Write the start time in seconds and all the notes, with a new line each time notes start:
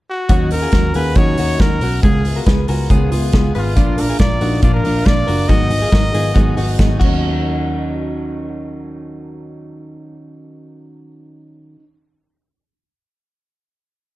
0.10 F#4
0.28 D#2 D#3 F#3 C#4 D#4 F#4 A#4, kick, closed hi-hat
0.51 C#4 A#4, open hi-hat
0.62 F4 G#4
0.72 D#2 F#3 C#4 F#4 A#4, kick, snare, closed hi-hat
0.94 D#2 C#4 F4 F#4 G#4 A#4 B4, open hi-hat
1.15 D#2 D#3 F#3 C#4 D#4 F#4 A#4 C#5, kick, closed hi-hat
1.37 D#2 C#4 D#4 F#4 A#4, open hi-hat
1.59 D#2 F#3 C#4 F#4 A#4, kick, snare, closed hi-hat
1.81 B1 C#4 F#4 A#4, open hi-hat
2.02 C#2 C#3 G#3 B3 F4 G#4, kick, closed hi-hat
2.24 B3 F4 G#4, open hi-hat
2.36 F#4 A#4
2.46 C#2 G#3 B3 F4 G#4 B4, kick, snare, closed hi-hat
2.68 C#2 B3 F4 F#4 G#4 A#4, open hi-hat
2.90 C#2 C#3 G#3 B3 F4 G#4, kick, closed hi-hat
3.11 C#2 B3 F4 G#4, open hi-hat
3.32 C#2 G#3 B3 F4 G#4, kick, snare, closed hi-hat
3.55 G#1 B3 F4 G#4 B4, open hi-hat
3.76 A#1 A#2 F3 A#3 D4 F4 A#4, kick, closed hi-hat
3.97 A#3 D4 F4 A#4, open hi-hat
4.09 F4 G#4
4.19 A#1 A#3 D4 F4 A#4 D5, kick, snare, closed hi-hat
4.41 A#1 A#3 D4 D#4 F4 F#4 A#4, open hi-hat
4.62 A#1 A#2 F3 A#3 D4 F4 A#4 D5, kick, closed hi-hat
4.74 A#4
4.84 A#1 A#3 D4 F4 A#4, open hi-hat
5.05 A#1 A#3 D4 F4 A#4 D5, kick, snare, closed hi-hat
5.27 F#1 A#3 D4 F4 F#4 A#4, open hi-hat
5.48 G#1 G#2 D#3 F#3 B3 D#4 F#4 G#4 D#5, kick, closed hi-hat
5.70 F#3 B3 D#4 G#4, open hi-hat
5.82 F4 G#4
5.91 G#1 F#3 B3 D#4 F#4 G#4 A#4, kick, snare, closed hi-hat
6.12 G#1 F#3 B3 D#4 F4 G#4, open hi-hat
6.34 G#1 G#2 D#3 F#3 B3 D#4 F#4 G#4, kick, closed hi-hat
6.56 G#1 F#3 B3 D#4 F#4 G#4, open hi-hat
6.78 G#1 F#3 B3 D#4 G#4, kick, snare, closed hi-hat
6.97 D#2 D#3 F#3 F#4, kick, crash
7.04 C#4 D#4
7.08 A#4